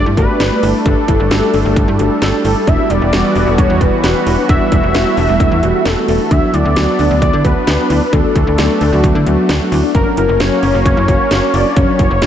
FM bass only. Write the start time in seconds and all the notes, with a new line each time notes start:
0.06 G2
0.17 G1
0.40 G1
0.63 G1
0.86 G1
1.08 G1
1.20 G1
1.31 G1
1.54 G1
1.65 G1
1.76 G1
1.88 G2
1.99 G1
2.22 G1
2.45 G1
2.67 E1
2.90 E1
3.01 E1
3.13 E1
3.36 E1
3.47 E1
3.58 E1
3.70 E2
3.81 E1
4.04 E1
4.26 E1
4.49 E1
4.72 E1
4.83 E1
4.95 E1
5.17 E1
5.29 E1
5.40 E1
5.51 E2
5.63 E1
5.86 E1
6.08 E1
6.31 D2
6.54 D2
6.65 D2
6.77 D2
6.99 D2
7.11 D2
7.22 D2
7.33 D3
7.45 D2
7.67 D2
7.90 D2
8.13 D2
8.36 D2
8.47 D2
8.58 D2
8.81 D2
8.92 D2
9.04 D2
9.15 D3
9.26 D2
9.49 D2
9.72 D2
9.95 F#1
10.17 F#1
10.29 F#1
10.40 F#1
10.63 F#1
10.74 F#1
10.86 F#1
10.97 F#2
11.08 F#1
11.31 F#1
11.54 F#1
11.77 F#1
11.99 F#1
12.11 F#1
12.22 F#1